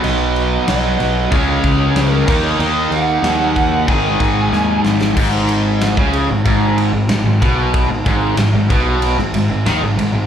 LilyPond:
<<
  \new Staff \with { instrumentName = "Lead electric guitar" } { \time 4/4 \key gis \minor \tempo 4 = 94 dis''4 dis''4 cis''4 ais'8. cis''16 | dis''8 fis''4. gis''4. r8 | r1 | r1 | }
  \new Staff \with { instrumentName = "Distorted electric guitar" } { \clef bass \time 4/4 \key gis \minor <b, fis b>2 <cis gis cis'>4. <dis ais dis'>8~ | <dis ais dis'>2 <gis, dis gis>2 | gis,4~ gis,16 cis8 gis,16 gis,8. gis,16 gis,16 gis,16 b,8~ | b,16 gis,16 gis,8 gis,16 gis,16 b,8. gis,16 gis,16 gis,16 dis16 gis,16 gis,16 gis,16 | }
  \new Staff \with { instrumentName = "Overdriven electric guitar" } { \clef bass \time 4/4 \key gis \minor <b, fis b>2 <cis gis cis'>4. <dis ais dis'>8~ | <dis ais dis'>2 <gis, dis gis>2 | gis,4~ gis,16 cis8 gis,16 gis,8. gis,16 gis,16 gis,16 b,8~ | b,16 gis,16 gis,8 gis,16 gis,16 b,8. gis,16 gis,16 gis,16 dis16 gis,16 gis,16 gis,16 | }
  \new Staff \with { instrumentName = "Overdriven electric guitar" } { \clef bass \time 4/4 \key gis \minor <b, fis b>2 <cis gis cis'>4. <dis ais dis'>8~ | <dis ais dis'>2 <gis, dis gis>2 | gis,4~ gis,16 cis8 gis,16 gis,8. gis,16 gis,16 gis,16 b,8~ | b,16 gis,16 gis,8 gis,16 gis,16 b,8. gis,16 gis,16 gis,16 dis16 gis,16 gis,16 gis,16 | }
  \new Staff \with { instrumentName = "Picked electric bass" } { \clef bass \time 4/4 \key gis \minor b,,4 b,,8 b,,8 cis,8 cis,8 cis,8 dis,8 | dis,8 dis,8 dis,4 gis,,8 gis,,8 dis,8 gis,,8 | gis,,4~ gis,,16 cis,8 gis,,16 gis,,8. gis,,16 gis,,16 gis,,16 b,,8~ | b,,16 gis,,16 gis,,8 gis,,16 gis,,16 b,,8. gis,,16 gis,,16 gis,,16 dis,16 gis,,16 gis,,16 gis,,16 | }
  \new DrumStaff \with { instrumentName = "Drums" } \drummode { \time 4/4 cymc8 cymc8 <cymc sn>8 cymc8 <cymc bd>8 <cymc bd>8 <cymc sn>8 <cymc bd>8 | cymc8 cymc8 <cymc sn>8 <cymc bd>8 <cymc bd>8 <cymc bd>8 sn8 sn16 sn16 | <cymc bd>8 cymr8 <cymr sn>16 bd16 cymr8 <bd cymr>8 cymr8 <cymr sn>8 <bd cymr>8 | <bd cymr>8 <bd cymr>8 <cymr sn>8 <bd cymr>8 cymr16 sn16 cymr8 <cymr sn>8 cymr8 | }
>>